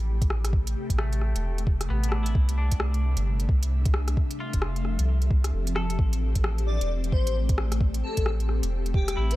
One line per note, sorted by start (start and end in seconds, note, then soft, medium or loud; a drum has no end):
0.00 0.75 A1 medium
0.00 2.31 C3 medium
0.00 4.12 A3 medium
0.00 2.30 G4 medium
0.22 kick loud
0.22 closed hi-hat soft
0.30 cross-stick medium
0.45 cross-stick medium
0.45 closed hi-hat medium
0.53 kick loud
0.67 closed hi-hat soft
0.90 1.33 A1 loud
0.90 kick medium
0.90 closed hi-hat soft
0.99 1.63 A3 medium
0.99 cross-stick loud
1.13 closed hi-hat soft
1.21 cross-stick soft
1.35 1.65 E1 medium
1.35 closed hi-hat medium
1.58 closed hi-hat soft
1.67 1.88 E1 medium
1.67 kick loud
1.81 cross-stick medium
1.81 closed hi-hat medium
1.89 2.34 A1 medium
1.89 2.54 B3 medium
2.04 closed hi-hat soft
2.09 2.56 D4 medium
2.09 cross-stick loud
2.23 2.81 E4 medium
2.23 closed hi-hat medium
2.34 2.70 C2 loud
2.34 4.14 C3 medium
2.34 4.14 G3 medium
2.34 4.14 D4 medium
2.34 5.94 E5 medium
2.34 kick loud
2.49 closed hi-hat soft
2.58 3.22 D4 medium
2.71 3.16 C2 medium
2.71 kick medium
2.71 closed hi-hat medium
2.80 cross-stick loud
2.94 closed hi-hat soft
3.17 3.47 G1 loud
3.17 closed hi-hat medium
3.40 closed hi-hat soft
3.49 4.16 C2 medium
3.49 kick loud
3.63 closed hi-hat medium
3.85 kick loud
3.85 closed hi-hat soft
3.94 cross-stick loud
4.08 cross-stick medium
4.08 closed hi-hat soft
4.17 5.97 F3 medium
4.17 9.36 C4 medium
4.17 9.36 G4 medium
4.17 5.97 A4 medium
4.17 kick loud
4.31 closed hi-hat soft
4.40 5.04 F4 medium
4.53 4.97 F1 medium
4.53 kick medium
4.53 closed hi-hat medium
4.62 cross-stick loud
4.76 closed hi-hat soft
4.85 cross-stick soft
4.99 5.29 C2 loud
4.99 closed hi-hat medium
5.22 closed hi-hat soft
5.31 5.52 C2 medium
5.31 kick loud
5.44 cross-stick medium
5.44 closed hi-hat medium
5.53 5.97 F1 medium
5.67 closed hi-hat soft
5.76 6.18 A4 medium
5.76 cross-stick loud
5.90 closed hi-hat medium
5.99 6.34 A1 loud
5.99 9.36 A3 medium
5.99 kick loud
6.13 closed hi-hat soft
6.35 6.79 A1 medium
6.35 kick medium
6.35 closed hi-hat soft
6.44 cross-stick loud
6.58 closed hi-hat soft
6.66 6.91 D5 medium
6.81 7.11 E1 medium
6.81 closed hi-hat soft
7.04 closed hi-hat soft
7.12 8.02 A1 medium
7.12 7.36 C5 medium
7.12 kick loud
7.27 closed hi-hat medium
7.49 kick loud
7.49 closed hi-hat soft
7.58 cross-stick loud
7.72 cross-stick medium
7.72 closed hi-hat soft
7.81 kick loud
7.94 closed hi-hat soft
8.03 8.27 A4 medium
8.17 8.61 A1 medium
8.17 kick medium
8.17 closed hi-hat soft
8.26 cross-stick medium
8.40 closed hi-hat soft
8.49 cross-stick soft
8.63 8.93 E1 loud
8.63 closed hi-hat medium
8.86 closed hi-hat soft
8.94 9.16 E1 medium
8.94 9.18 G4 medium
8.94 kick loud
9.08 cross-stick medium
9.08 closed hi-hat medium
9.17 9.36 A1 medium
9.17 9.36 E4 medium
9.31 9.36 C5 medium
9.31 closed hi-hat soft